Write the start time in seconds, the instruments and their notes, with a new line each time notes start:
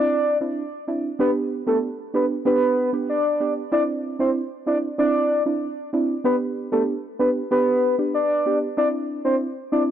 Already playing: synth stab C4 D4 E4, soft synth lead D5
0.41 synth stab C4 D4 E4
0.88 synth stab C4 D4 E4
1.19 synth stab B3 D4 G4, soft synth lead B4
1.67 synth stab B3 D4 G4, soft synth lead A4
2.14 synth stab B3 D4 G4, soft synth lead B4
2.45 synth stab B3 D4 G4, soft synth lead B4
2.93 synth stab B3 D4 G4
3.09 soft synth lead D5
3.40 synth stab B3 D4 G4
3.72 synth stab C4 D4 E4, soft synth lead D5
4.19 synth stab C4 D4 E4, soft synth lead C5
4.66 synth stab C4 D4 E4, soft synth lead D5
4.98 synth stab C4 D4 E4, soft synth lead D5
5.46 synth stab C4 D4 E4
5.93 synth stab C4 D4 E4
6.24 synth stab B3 D4 G4, soft synth lead B4
6.72 synth stab B3 D4 G4, soft synth lead A4
7.19 synth stab B3 D4 G4, soft synth lead B4
7.51 synth stab B3 D4 G4, soft synth lead B4
7.98 synth stab B3 D4 G4
8.14 soft synth lead D5
8.46 synth stab B3 D4 G4
8.77 synth stab C4 D4 E4, soft synth lead D5
9.25 synth stab C4 D4 E4, soft synth lead C5
9.72 synth stab C4 D4 E4, soft synth lead D5